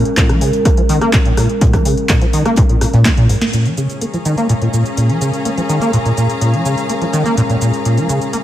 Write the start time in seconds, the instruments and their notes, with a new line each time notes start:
Already playing: ambient pad G#3 C#4 A#4
0.05 closed hi-hat
0.17 acid bass A#2, kick, snare, clap, closed hi-hat, mid tom
0.29 acid bass F3, cross-stick, closed hi-hat
0.41 acid bass C#3, closed hi-hat, open hi-hat
0.53 closed hi-hat
0.65 acid bass A#3, kick, cross-stick, closed hi-hat
0.77 acid bass F3, closed hi-hat
0.89 acid bass D#3, closed hi-hat, open hi-hat
1.01 acid bass A#3, cross-stick, closed hi-hat
1.13 acid bass A#2, kick, snare, clap, closed hi-hat
1.25 acid bass A#2, closed hi-hat
1.37 acid bass A#2, cross-stick, snare, closed hi-hat, open hi-hat
1.49 closed hi-hat
1.61 acid bass A#2, kick, closed hi-hat
1.73 acid bass F3, kick, cross-stick, closed hi-hat
1.85 acid bass C#3, closed hi-hat, open hi-hat
1.97 closed hi-hat
2.09 acid bass A#3, kick, cross-stick, snare, clap, closed hi-hat, mid tom
2.21 acid bass F3, snare, closed hi-hat
2.33 acid bass D#3, closed hi-hat, open hi-hat
2.45 acid bass A#3, cross-stick, closed hi-hat
2.56 acid bass A#2, kick, closed hi-hat
2.69 acid bass A#2, closed hi-hat
2.81 acid bass A#2, cross-stick, snare, closed hi-hat, open hi-hat
2.93 acid bass A#2, snare, closed hi-hat, mid tom
3.05 acid bass D#3, kick, snare, clap, closed hi-hat
3.17 acid bass A#2, closed hi-hat, mid tom
3.29 acid bass G#2, closed hi-hat, open hi-hat
3.41 snare, closed hi-hat
3.53 acid bass A#2, ambient pad G#3 C#4 A#4, string section C#4, closed hi-hat, cabasa
3.65 acid bass F3, closed hi-hat, cabasa
3.77 acid bass C#3, closed hi-hat, cabasa
3.82 string section G#4
3.90 closed hi-hat, cabasa
4.01 acid bass A#3, string section F5 A#5, closed hi-hat, cabasa
4.14 acid bass F3, closed hi-hat, cabasa
4.25 acid bass D#3, closed hi-hat, cabasa
4.38 acid bass A#3, closed hi-hat, cabasa
4.49 acid bass A#2, closed hi-hat, cabasa
4.61 acid bass A#2, closed hi-hat
4.73 acid bass A#2, closed hi-hat, cabasa
4.86 closed hi-hat, cabasa
4.97 acid bass A#2, closed hi-hat, cabasa
5.09 acid bass F3, closed hi-hat
5.21 acid bass C#3, closed hi-hat, cabasa
5.33 closed hi-hat, cabasa
5.45 acid bass A#3, closed hi-hat, cabasa
5.57 acid bass F3, closed hi-hat, cabasa
5.69 acid bass D#3, closed hi-hat, cabasa
5.81 acid bass A#3, closed hi-hat, cabasa
5.93 acid bass A#2, closed hi-hat, cabasa
6.05 acid bass A#2, closed hi-hat, cabasa
6.17 acid bass A#2, closed hi-hat, cabasa
6.30 closed hi-hat, cabasa
6.41 acid bass A#2, closed hi-hat, cabasa
6.53 acid bass F3, closed hi-hat
6.65 acid bass C#3, closed hi-hat, cabasa
6.78 closed hi-hat, cabasa
6.89 acid bass A#3, closed hi-hat, cabasa
7.01 acid bass F3, closed hi-hat
7.13 acid bass D#3, closed hi-hat, cabasa
7.25 acid bass A#3, closed hi-hat, cabasa
7.37 acid bass A#2, closed hi-hat, cabasa
7.49 acid bass A#2, closed hi-hat, cabasa
7.61 acid bass A#2, closed hi-hat, cabasa
7.74 closed hi-hat, cabasa
7.85 acid bass A#2, closed hi-hat, cabasa
7.97 acid bass F3, closed hi-hat, cabasa
8.09 acid bass C#3, closed hi-hat, cabasa
8.21 closed hi-hat, cabasa
8.33 acid bass A#3, closed hi-hat, cabasa